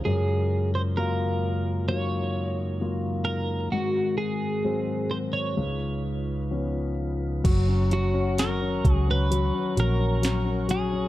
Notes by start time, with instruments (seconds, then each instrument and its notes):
0.05 grand piano F#2, tonewheel organ F#2 C#3 G#3 F4 A#4, clean electric guitar G#4
0.75 clean electric guitar C5
0.97 grand piano F#3 A#3 F4, clean electric guitar A#4
1.89 grand piano F#3 A#3 F4, tonewheel organ D#4, clean electric guitar C#5
2.81 grand piano F#3 A#3 F4
3.25 clean electric guitar A#4
3.72 tonewheel organ G#2 D#3 C4 F#4, grand piano G#2, clean electric guitar F#4
4.18 clean electric guitar G#4
4.64 grand piano F#3 G#3 C4
5.11 clean electric guitar C5
5.33 clean electric guitar C#5
5.57 grand piano C#2, tonewheel organ C#2 C#3 D#4 F4 B4
6.51 grand piano F3 B3 C#4
7.44 fingered electric bass F#1, grand piano F#3, tonewheel organ C#5 F#5 A#5 C#6, kick, closed hi-hat, crash
7.68 grand piano C#4
7.91 grand piano F#3, clean electric guitar F#4, closed hi-hat
8.14 grand piano C#4
8.38 grand piano F#3, clean electric guitar A#4, snare, closed hi-hat
8.61 grand piano C#4
8.84 fingered electric bass C#2, grand piano F#3, kick, closed hi-hat
8.92 clean electric guitar G#4
9.08 grand piano C#4, clean electric guitar B4
9.31 grand piano F#3, closed hi-hat
9.54 grand piano C#4
9.77 fingered electric bass A#1, grand piano F#3, clean electric guitar A#4, closed hi-hat
9.99 grand piano C#4
10.22 grand piano F#3, snare, closed hi-hat
10.45 grand piano C#4
10.68 grand piano F#3, clean electric guitar G#4, closed hi-hat
10.92 grand piano C#4